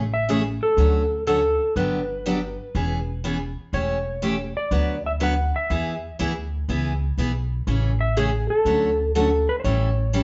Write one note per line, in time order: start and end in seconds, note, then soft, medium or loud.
0.00 0.58 A1 medium
0.14 0.29 E5 loud
0.29 0.41 C#3 medium
0.29 0.41 E3 medium
0.29 0.41 A3 medium
0.29 0.41 C#4 medium
0.29 0.41 G#4 medium
0.29 0.39 G#4 medium
0.63 1.23 A4 medium
0.77 1.56 D2 medium
0.77 1.01 D3 medium
0.77 1.01 F#3 medium
0.77 1.01 A3 soft
0.77 1.01 C#4 medium
0.77 1.01 F#4 medium
1.27 1.39 D3 medium
1.27 1.39 F#3 medium
1.27 1.39 A3 medium
1.27 1.39 C#4 medium
1.27 1.40 F#4 medium
1.27 1.73 A4 medium
1.76 2.55 G1 medium
1.76 1.99 D3 medium
1.76 1.99 F#3 medium
1.76 1.99 B3 medium
1.76 2.00 D4 medium
1.76 2.00 G4 medium
1.76 3.20 B4 medium
2.26 2.38 D3 medium
2.26 2.38 F#3 medium
2.26 2.38 B3 medium
2.26 2.38 D4 medium
2.26 2.38 G4 medium
2.75 3.53 E1 medium
2.75 2.98 E3 soft
2.75 2.98 B3 soft
2.75 2.98 C#4 soft
2.75 2.98 G#4 medium
3.24 3.36 E3 medium
3.24 3.36 B3 medium
3.24 3.37 C#4 medium
3.24 3.37 G#4 medium
3.73 4.52 E1 medium
3.73 3.96 E3 soft
3.73 3.96 A3 medium
3.73 3.97 C#4 medium
3.73 3.97 G4 medium
3.73 4.56 C#5 medium
4.22 4.34 E3 medium
4.22 4.35 A3 medium
4.22 4.35 C#4 medium
4.22 4.35 G4 medium
4.57 5.06 D5 medium
4.71 5.50 D2 medium
4.71 4.94 D3 soft
4.71 4.95 F#3 medium
4.71 4.95 B3 medium
4.71 4.95 F#4 medium
4.71 4.95 B4 medium
5.06 5.11 E5 loud
5.20 5.33 D3 medium
5.20 5.33 F#3 medium
5.20 5.33 B3 medium
5.20 5.33 F#4 medium
5.20 5.33 B4 medium
5.20 5.56 F#5 medium
5.56 6.16 E5 medium
5.70 6.10 E2 medium
5.70 5.93 E3 medium
5.70 5.93 B3 medium
5.70 5.93 E4 medium
5.70 5.94 G#4 medium
6.19 6.61 D2 medium
6.19 6.31 E3 medium
6.19 6.32 B3 medium
6.19 6.32 E4 medium
6.19 6.32 G#4 medium
6.68 7.10 C#2 medium
6.68 6.92 E3 soft
6.68 6.92 B3 medium
6.68 6.92 E4 medium
6.68 6.92 G#4 medium
7.18 7.60 B1 medium
7.18 7.30 E3 medium
7.18 7.31 B3 medium
7.18 7.31 E4 medium
7.18 7.31 G#4 medium
7.67 8.46 A1 medium
7.67 7.90 C#3 medium
7.67 7.90 E3 soft
7.67 7.91 A3 soft
7.67 7.91 C#4 medium
7.67 7.91 G#4 medium
8.01 8.17 E5 medium
8.17 8.29 C#3 medium
8.17 8.29 E3 medium
8.17 8.29 A3 medium
8.17 8.29 C#4 medium
8.17 8.48 G#4 medium
8.17 8.29 G#4 medium
8.50 9.11 A4 medium
8.65 9.44 D2 medium
8.65 8.89 D3 medium
8.65 8.89 F#3 medium
8.65 8.89 A3 medium
8.65 8.89 C#4 medium
8.65 8.89 F#4 medium
9.15 9.27 D3 medium
9.15 9.28 F#3 medium
9.15 9.28 A3 medium
9.15 9.28 C#4 medium
9.15 9.28 F#4 medium
9.15 9.50 A4 medium
9.49 9.59 B4 medium
9.60 9.64 C5 medium
9.64 10.23 A1 medium
9.64 9.87 E3 medium
9.64 9.88 G3 medium
9.64 9.88 C#4 medium
9.64 9.88 E4 medium
9.64 9.88 A4 medium
9.64 10.23 C#5 medium
10.13 10.23 E3 medium
10.13 10.23 G3 medium
10.13 10.23 C#4 medium
10.13 10.23 E4 medium
10.13 10.23 A4 medium